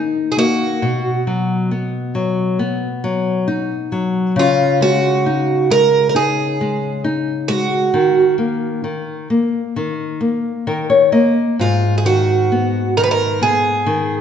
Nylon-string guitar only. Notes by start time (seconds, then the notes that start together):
Already playing: D#3 D#4
0.37 A#3
0.82 B2
1.27 F#3
1.71 B3
2.15 F#3
2.59 B3
3.04 F#3
3.48 D#4
3.92 F#3
4.36 C#3
4.81 G#3
5.26 D#4
5.70 G#3
6.15 D#4
6.61 G#3
7.04 D#4
7.49 G#3
7.94 D#3
8.38 A#3
8.84 D#3
9.30 A#3
9.76 D#3
10.21 A#3
10.67 D#3 A#4
10.90 C#5
11.12 A#3 D#5
11.59 G#2
12.05 D#3
12.52 B3
12.98 D#3
13.41 B3
13.86 D#3